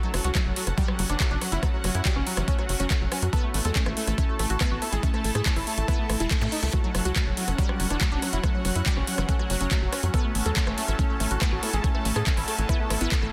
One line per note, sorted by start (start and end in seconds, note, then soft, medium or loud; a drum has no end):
0.00 0.08 F#3 medium
0.00 0.10 F#3 medium
0.00 4.69 C#4 medium
0.00 0.65 E4 medium
0.00 1.29 A4 medium
0.00 3.92 F#5 medium
0.00 0.70 A5 medium
0.14 0.21 F#1 medium
0.14 0.19 F#3 medium
0.14 0.21 F#3 medium
0.14 cross-stick medium
0.14 open hi-hat loud
0.24 0.31 C#2 medium
0.24 0.35 F#3 medium
0.24 0.29 F#4 medium
0.24 closed hi-hat medium
0.33 0.40 F#3 medium
0.33 0.45 A3 medium
0.33 4.69 F#4 medium
0.33 kick loud
0.33 cross-stick soft
0.33 clap loud
0.33 closed hi-hat medium
0.46 0.52 F#1 medium
0.46 0.51 F#3 medium
0.56 0.60 F#3 medium
0.56 0.61 F#3 medium
0.56 open hi-hat loud
0.67 0.74 F#1 medium
0.67 cross-stick soft
0.67 closed hi-hat medium
0.78 0.83 F#3 medium
0.78 0.88 G3 loud
0.78 kick loud
0.78 closed hi-hat medium
0.88 0.93 F#3 medium
0.88 cross-stick medium
0.99 1.06 F#1 loud
0.99 1.04 F#3 medium
0.99 open hi-hat loud
1.10 1.16 F#1 medium
1.10 1.20 E3 medium
1.10 1.15 D4 medium
1.10 cross-stick soft
1.10 closed hi-hat medium
1.20 1.25 F#3 medium
1.20 1.27 A3 medium
1.20 kick loud
1.20 clap loud
1.20 closed hi-hat medium
1.31 1.38 F#1 medium
1.31 1.38 F#3 medium
1.31 1.36 D4 medium
1.41 1.48 F#3 medium
1.41 1.47 F#3 medium
1.41 cross-stick soft
1.41 open hi-hat loud
1.52 1.59 F#1 medium
1.52 1.62 F#3 medium
1.52 1.57 E4 medium
1.52 closed hi-hat medium
1.63 1.68 F#3 medium
1.63 1.73 A3 medium
1.63 kick loud
1.63 cross-stick medium
1.63 closed hi-hat medium
1.73 1.78 F#3 medium
1.84 1.91 F#1 medium
1.84 1.88 F#3 medium
1.84 1.89 F#3 medium
1.84 cross-stick soft
1.84 open hi-hat loud
1.95 2.01 F#2 medium
1.95 2.00 E4 medium
1.95 closed hi-hat medium
2.05 2.10 F#3 medium
2.05 2.15 G3 loud
2.05 kick loud
2.05 clap loud
2.05 closed hi-hat medium
2.16 2.23 F#1 medium
2.16 2.21 C#4 loud
2.16 cross-stick soft
2.27 2.32 F#3 medium
2.27 open hi-hat loud
2.37 2.44 F#1 medium
2.37 2.47 E3 medium
2.37 2.42 F#3 medium
2.37 cross-stick medium
2.37 closed hi-hat medium
2.48 2.55 A3 medium
2.48 2.53 C#4 medium
2.48 kick loud
2.48 closed hi-hat medium
2.58 2.63 F#3 medium
2.58 2.65 F#3 medium
2.58 cross-stick soft
2.69 2.76 F#1 loud
2.69 2.74 F#3 medium
2.69 2.76 F#3 medium
2.69 open hi-hat loud
2.80 2.86 F#1 medium
2.80 2.90 F#3 medium
2.80 2.85 C#4 loud
2.80 closed hi-hat medium
2.90 2.95 F#3 medium
2.90 3.01 A3 medium
2.90 kick loud
2.90 cross-stick soft
2.90 clap loud
2.90 closed hi-hat medium
3.01 3.08 F#1 medium
3.01 3.06 F#3 medium
3.12 3.16 F#3 medium
3.12 3.17 C#4 medium
3.12 cross-stick medium
3.12 open hi-hat loud
3.22 3.29 F#2 medium
3.22 3.27 F#3 medium
3.22 closed hi-hat medium
3.33 3.43 B3 loud
3.33 8.10 E4 medium
3.33 3.38 A4 loud
3.33 kick loud
3.33 cross-stick soft
3.33 closed hi-hat medium
3.44 3.49 A3 medium
3.53 3.61 A1 medium
3.53 3.59 A3 medium
3.53 8.10 A4 medium
3.53 open hi-hat medium
3.65 3.72 E2 medium
3.65 3.75 G#3 medium
3.65 3.70 A4 medium
3.65 cross-stick soft
3.65 closed hi-hat medium
3.75 3.81 A3 medium
3.75 3.82 C#4 medium
3.75 kick loud
3.75 clap loud
3.75 closed hi-hat medium
3.86 3.93 A1 medium
3.86 3.93 A3 medium
3.86 3.91 A3 medium
3.86 cross-stick medium
3.97 4.04 A3 medium
3.97 4.02 A3 medium
3.97 open hi-hat loud
4.07 4.14 A1 medium
4.07 4.18 A3 medium
4.07 cross-stick soft
4.07 closed hi-hat medium
4.16 4.23 A3 medium
4.16 4.28 C#4 medium
4.16 7.50 A5 medium
4.16 kick loud
4.16 closed hi-hat medium
4.29 4.34 A3 medium
4.39 4.46 A1 loud
4.39 4.43 A3 medium
4.39 4.44 A3 medium
4.39 cross-stick soft
4.39 open hi-hat loud
4.50 4.57 A1 medium
4.50 4.55 F#4 medium
4.50 closed hi-hat medium
4.61 4.66 A3 medium
4.61 4.71 B3 loud
4.61 kick loud
4.61 cross-stick medium
4.61 clap loud
4.61 closed hi-hat medium
4.71 4.78 A1 medium
4.71 4.76 F#4 medium
4.82 4.87 A3 medium
4.82 cross-stick soft
4.82 open hi-hat loud
4.93 4.99 A1 medium
4.93 5.03 G#3 medium
4.93 4.98 G#4 medium
4.93 closed hi-hat medium
5.03 5.08 A3 medium
5.03 5.10 C#4 medium
5.03 kick loud
5.03 closed hi-hat medium
5.14 5.19 A3 medium
5.14 5.21 A3 medium
5.14 cross-stick soft
5.24 5.31 A1 medium
5.24 5.29 A3 medium
5.24 5.31 A3 medium
5.24 open hi-hat loud
5.35 5.42 A2 medium
5.35 5.45 A3 medium
5.35 5.40 G#4 medium
5.35 cross-stick medium
5.35 closed hi-hat medium
5.46 5.51 A3 medium
5.46 5.56 C#4 medium
5.46 kick loud
5.46 clap loud
5.46 closed hi-hat medium
5.56 5.63 A1 medium
5.56 5.61 E4 medium
5.56 cross-stick soft
5.56 open hi-hat medium
5.67 5.71 A3 medium
5.67 5.72 A3 medium
5.67 open hi-hat loud
5.78 5.84 A1 medium
5.78 5.83 A3 medium
5.78 closed hi-hat medium
5.88 5.98 B3 loud
5.88 5.93 E4 medium
5.88 kick loud
5.88 cross-stick soft
5.88 closed hi-hat medium
5.88 reverse cymbal medium
5.99 6.04 A3 medium
6.10 6.16 A1 loud
6.10 6.15 A3 medium
6.10 cross-stick medium
6.10 open hi-hat loud
6.20 6.27 E1 medium
6.20 6.30 G#3 medium
6.20 6.25 E4 medium
6.20 closed hi-hat medium
6.31 6.36 A3 medium
6.31 6.38 C#4 medium
6.31 kick loud
6.31 cross-stick soft
6.31 clap loud
6.31 closed hi-hat medium
6.41 6.48 A2 medium
6.41 6.48 A3 medium
6.41 6.46 A3 medium
6.41 zap medium
6.52 6.59 A3 medium
6.52 6.57 D#4 loud
6.52 open hi-hat loud
6.63 6.69 C#2 medium
6.63 6.68 A3 medium
6.63 6.72 A3 medium
6.63 cross-stick soft
6.63 closed hi-hat medium
6.73 13.32 F#3 medium
6.73 6.80 A3 medium
6.73 11.38 C#4 medium
6.73 13.32 C#4 medium
6.73 6.78 F#4 loud
6.73 kick loud
6.73 cross-stick soft
6.73 closed hi-hat medium
6.84 6.89 F#3 medium
6.84 6.91 F#3 medium
6.84 11.24 F#4 medium
6.84 10.91 F#5 medium
6.95 7.01 F#1 medium
6.95 7.00 F#3 medium
6.95 7.01 F#3 medium
6.95 cross-stick medium
6.95 open hi-hat loud
7.05 7.12 C#2 medium
7.05 7.15 F#3 medium
7.05 7.10 F#4 medium
7.05 closed hi-hat medium
7.16 7.21 F#3 medium
7.16 7.26 A3 medium
7.16 kick loud
7.16 cross-stick soft
7.16 clap loud
7.16 closed hi-hat medium
7.27 7.33 F#1 medium
7.27 7.32 F#3 medium
7.37 7.42 F#3 medium
7.37 7.47 F#3 medium
7.37 open hi-hat loud
7.48 7.55 F#1 medium
7.48 cross-stick soft
7.48 closed hi-hat medium
7.58 7.64 F#3 medium
7.58 7.69 G3 loud
7.58 kick loud
7.58 closed hi-hat medium
7.69 7.74 F#3 medium
7.69 cross-stick medium
7.80 7.86 F#1 loud
7.80 7.85 F#3 medium
7.80 open hi-hat loud
7.90 7.97 F#1 medium
7.90 8.01 E3 medium
7.90 7.95 D4 medium
7.90 cross-stick soft
7.90 closed hi-hat medium
8.01 8.06 F#3 medium
8.01 8.08 A3 medium
8.01 kick loud
8.01 clap loud
8.01 closed hi-hat medium
8.12 8.18 F#1 medium
8.12 8.18 F#3 medium
8.12 8.17 D4 medium
8.22 8.29 F#3 medium
8.22 8.27 F#3 medium
8.22 cross-stick soft
8.22 open hi-hat loud
8.33 8.40 F#1 medium
8.33 8.43 F#3 medium
8.33 8.38 E4 medium
8.33 closed hi-hat medium
8.44 8.49 F#3 medium
8.44 8.54 A3 medium
8.44 kick loud
8.44 cross-stick medium
8.44 closed hi-hat medium
8.54 8.59 F#3 medium
8.65 8.72 F#1 medium
8.65 8.70 F#3 medium
8.65 8.75 F#3 medium
8.65 cross-stick soft
8.65 open hi-hat loud
8.75 8.82 F#2 medium
8.75 8.80 E4 medium
8.75 closed hi-hat medium
8.86 8.91 F#3 medium
8.86 8.96 G3 loud
8.86 kick loud
8.86 clap loud
8.86 closed hi-hat medium
8.97 9.03 F#1 medium
8.97 9.02 C#4 medium
8.97 cross-stick soft
9.07 9.12 F#3 medium
9.07 open hi-hat loud
9.18 9.25 F#1 medium
9.18 9.28 E3 medium
9.18 9.23 F#3 medium
9.18 cross-stick medium
9.18 closed hi-hat medium
9.29 9.35 A3 medium
9.29 9.34 C#4 medium
9.29 kick loud
9.29 closed hi-hat medium
9.39 9.44 F#3 medium
9.39 9.46 F#3 medium
9.39 cross-stick soft
9.50 9.57 F#1 loud
9.50 9.55 F#3 medium
9.50 9.57 F#3 medium
9.50 open hi-hat loud
9.61 9.67 F#1 medium
9.61 9.71 F#3 medium
9.61 9.66 C#4 medium
9.61 closed hi-hat medium
9.71 9.76 F#3 medium
9.71 9.81 A3 medium
9.71 kick loud
9.71 cross-stick soft
9.71 clap loud
9.71 closed hi-hat medium
9.82 9.89 F#1 medium
9.82 9.87 F#3 medium
9.93 10.03 F#3 medium
9.93 9.98 C#4 medium
9.93 cross-stick medium
9.93 open hi-hat loud
10.03 10.10 F#2 medium
10.03 10.08 F#3 medium
10.03 closed hi-hat medium
10.14 10.24 B3 loud
10.14 13.32 E4 medium
10.14 10.19 A4 loud
10.14 kick loud
10.14 cross-stick soft
10.14 closed hi-hat medium
10.24 10.29 A3 medium
10.30 13.32 A5 medium
10.35 10.42 A1 medium
10.35 10.40 A3 medium
10.35 open hi-hat loud
10.46 10.52 E2 medium
10.46 10.56 G#3 medium
10.46 10.51 A4 medium
10.46 cross-stick soft
10.46 closed hi-hat medium
10.50 13.32 A4 medium
10.56 10.61 A3 medium
10.56 10.63 C#4 medium
10.56 kick loud
10.56 clap loud
10.56 closed hi-hat medium
10.67 10.74 A1 medium
10.67 10.72 A3 medium
10.67 10.74 A3 medium
10.67 cross-stick medium
10.78 10.83 A3 medium
10.78 10.84 A3 medium
10.78 open hi-hat loud
10.88 10.95 A1 medium
10.88 10.98 A3 medium
10.88 cross-stick soft
10.88 closed hi-hat medium
10.99 11.04 A3 medium
10.99 11.09 C#4 medium
10.99 kick loud
10.99 closed hi-hat medium
11.10 11.15 A3 medium
11.20 11.27 A1 loud
11.20 11.25 A3 medium
11.20 11.30 A3 medium
11.20 cross-stick soft
11.20 open hi-hat loud
11.31 11.38 A1 medium
11.31 11.36 F#4 medium
11.31 closed hi-hat medium
11.41 11.46 A3 medium
11.41 11.52 B3 loud
11.41 kick loud
11.41 cross-stick medium
11.41 clap loud
11.41 closed hi-hat medium
11.52 11.59 A1 medium
11.52 11.57 F#4 medium
11.63 11.68 A3 medium
11.63 cross-stick soft
11.63 open hi-hat loud
11.73 11.80 A1 medium
11.73 11.83 G#3 medium
11.73 11.78 G#4 loud
11.73 closed hi-hat medium
11.84 11.89 A3 medium
11.84 11.91 C#4 medium
11.84 kick loud
11.84 closed hi-hat medium
11.95 12.01 A3 medium
11.95 12.00 A3 medium
11.95 cross-stick soft
12.05 12.12 A1 medium
12.05 12.12 A3 medium
12.05 12.10 A3 medium
12.05 open hi-hat loud
12.16 12.23 A2 medium
12.16 12.26 A3 medium
12.16 12.21 G#4 medium
12.16 cross-stick medium
12.16 closed hi-hat medium
12.27 12.32 A3 medium
12.27 12.37 C#4 medium
12.27 kick loud
12.27 clap loud
12.27 closed hi-hat medium
12.37 12.44 A1 medium
12.37 12.42 E4 loud
12.37 cross-stick soft
12.37 open hi-hat medium
12.48 12.58 A3 medium
12.48 12.53 A3 medium
12.48 open hi-hat loud
12.58 12.65 A1 medium
12.58 12.64 A3 medium
12.58 closed hi-hat medium
12.69 12.79 B3 loud
12.69 12.74 E4 loud
12.69 kick loud
12.69 cross-stick soft
12.69 closed hi-hat medium
12.80 12.85 A3 medium
12.90 12.97 A1 loud
12.90 12.95 A3 medium
12.90 12.97 E4 medium
12.90 cross-stick medium
12.90 open hi-hat loud
13.01 13.08 A1 medium
13.01 13.11 B3 loud
13.01 13.06 E4 medium
13.01 closed hi-hat medium
13.12 13.17 A3 medium
13.12 kick loud
13.12 cross-stick soft
13.12 clap loud
13.12 closed hi-hat medium
13.22 13.29 A1 medium
13.22 13.27 A3 medium
13.22 13.29 A4 medium